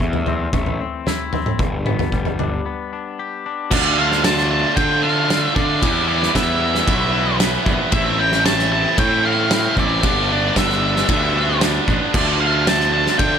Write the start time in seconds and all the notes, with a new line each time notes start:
Already playing: A2 A3
0.00 E2 E3, kick
0.13 floor tom
0.26 C4, floor tom
0.53 A1 A3, kick, floor tom
0.66 floor tom
0.80 C4
1.07 E4, snare, floor tom
1.33 C4, floor tom
1.46 mid tom
1.59 G1 G2, kick, floor tom
1.86 B3, mid tom
1.99 floor tom
2.12 G1 G3, kick
2.25 floor tom
2.39 D4, floor tom
2.66 B3
2.93 D4
3.19 G4
3.46 D4
3.71 D2 D3 A3 D4 F4 D5, kick, crash
3.97 A3 D4 F4 F5
4.12 snare
4.24 D3 A3 D4 F4 A5, snare, ride bell
4.38 snare
4.51 A5
4.76 D3 A3 D4 F4 G5, kick, ride bell
5.03 A3 D4 F4 F5
5.29 D3 A3 D4 F4, snare, ride bell
5.43 E5
5.56 D3 A3 D4 F4 D5, kick
5.82 E2 E3 G3 B3 E4, kick, ride bell
6.08 G3 B3 E4 D5
6.23 snare
6.34 E2 E3 G3 B3 E4 E5, kick, snare, ride bell
6.75 snare
6.87 B1 E3 G3 B3 E4, kick, ride bell
7.13 G3 B3 E4
7.39 E3 G3 B3 E4, snare, ride bell
7.65 A#1 G3 B3 E4, kick
7.92 A1 A2 E3 A3 C4 E4 E5, kick, ride bell
8.19 A3 C4 E4 G5
8.32 snare
8.45 E3 A3 C4 E4 A5, snare, ride bell
8.59 snare
8.72 A5
8.98 A2 E3 A3 C4 E4 G5, kick, ride bell
9.25 A3 C4 E4 F5
9.50 E3 A3 C4 E4, snare, ride bell
9.76 A1 A3 C4 E4 D5, kick
10.03 G1 G2 D3 G3 B3 D4, kick, ride bell
10.30 G3 B3 D4 D5
10.56 G1 D3 G3 B3 D4 E5, kick, snare, ride bell
10.70 snare
10.96 snare
11.08 D2 G2 D3 G3 B3 D4, kick, ride bell
11.35 G3 B3 D4
11.61 D3 G3 B3 D4, snare, ride bell
11.88 A1 G3 B3 D4, kick
12.14 D2 D3 F3 A3 D4 D5, kick, crash
12.40 F3 A3 D4 F5
12.67 D3 F3 A3 D4 A5, snare, ride bell
12.81 snare
12.92 A5
13.06 snare
13.18 D3 F3 A3 D4 G5, kick, ride bell